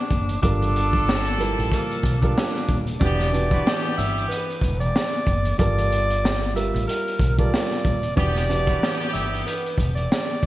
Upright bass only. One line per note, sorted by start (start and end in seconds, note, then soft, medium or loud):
0.11 0.38 F#1 loud
0.43 1.54 G1 loud
1.58 1.70 A1 medium
2.03 2.31 B1 medium
2.69 2.96 D#1 medium
3.01 3.55 E1 loud
3.98 4.25 G1 medium
4.62 4.89 E1 loud
5.27 5.54 F#1 loud
5.59 6.70 G1 loud
6.74 6.86 A1 loud
7.20 7.47 B1 loud
7.85 8.12 D#1 loud
8.17 8.71 E1 loud
9.14 9.41 G1 medium
9.78 10.05 E1 loud
10.43 10.46 F#1 loud